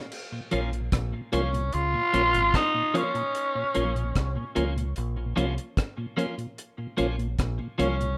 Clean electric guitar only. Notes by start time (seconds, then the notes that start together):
0.51 F3 A#3 C#4 F4
1.33 F3 A#3 C#4 F4
1.53 muted clean electric guitar stroke
2.13 F3 A#3 C#4 F4
2.94 F3 A#3 C#4 F4
3.74 F3 A#3 C#4 F4
4.55 F3 A#3 C#4 F4
5.36 F3 A#3 C#4 F4
6.17 F3 A#3 C#4 F4
6.97 F3 A#3 C#4 F4
7.78 F3 A#3 C#4 F4